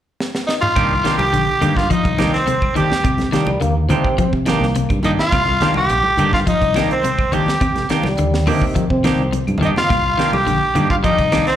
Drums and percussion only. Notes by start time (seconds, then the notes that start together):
0.20 snare
0.35 snare
0.49 snare
0.63 mid tom
0.76 kick, closed hi-hat, claves
1.05 snare, closed hi-hat
1.19 high conga, claves
1.34 closed hi-hat
1.62 closed hi-hat, high conga, low conga, claves
1.77 kick, snare
1.91 kick, closed hi-hat
2.05 kick, closed hi-hat, high conga
2.18 snare, closed hi-hat, high conga, claves
2.34 snare, closed hi-hat
2.47 closed hi-hat, high conga
2.62 kick, claves
2.76 closed hi-hat, low conga
2.90 snare, high conga
3.04 kick, closed hi-hat, claves
3.18 snare, closed hi-hat, high conga
3.33 snare, closed hi-hat
3.47 high conga, claves
3.60 closed hi-hat, low conga
3.89 closed hi-hat, high conga, low conga, claves
4.04 kick
4.18 kick, closed hi-hat
4.33 kick
4.46 snare, closed hi-hat, high conga, claves
4.63 snare
4.75 closed hi-hat, high conga
4.89 kick, closed hi-hat, claves
5.03 closed hi-hat, low conga
5.19 snare
5.32 kick, closed hi-hat, claves
5.46 high conga
5.60 snare, closed hi-hat, low conga
5.74 high conga, claves
5.90 closed hi-hat
6.03 high conga
6.17 closed hi-hat, high conga, low conga, claves
6.33 kick, snare
6.47 kick, closed hi-hat
6.62 kick, closed hi-hat
6.74 snare, closed hi-hat, high conga, claves
6.91 closed hi-hat
7.03 closed hi-hat, high conga
7.18 kick, claves
7.32 closed hi-hat, low conga
7.46 snare, high conga
7.61 kick, closed hi-hat, claves
7.76 snare, closed hi-hat, high conga
7.89 snare, closed hi-hat
8.03 snare, high conga, claves
8.18 closed hi-hat
8.34 snare
8.47 open hi-hat, high conga, low conga, claves
8.62 kick
8.76 kick, closed hi-hat
8.90 kick
9.04 snare, closed hi-hat, high conga, claves
9.33 closed hi-hat, high conga
9.47 closed hi-hat, high conga, claves
9.58 low conga
9.63 closed hi-hat
9.67 low conga
9.76 snare, low conga
9.90 kick, snare, closed hi-hat, claves
10.19 snare, closed hi-hat
10.33 high conga, claves
10.47 closed hi-hat, low conga
10.75 closed hi-hat, high conga, low conga, claves
10.90 kick
11.04 kick, closed hi-hat
11.19 kick, closed hi-hat
11.32 snare, closed hi-hat, high conga, claves
11.47 snare, closed hi-hat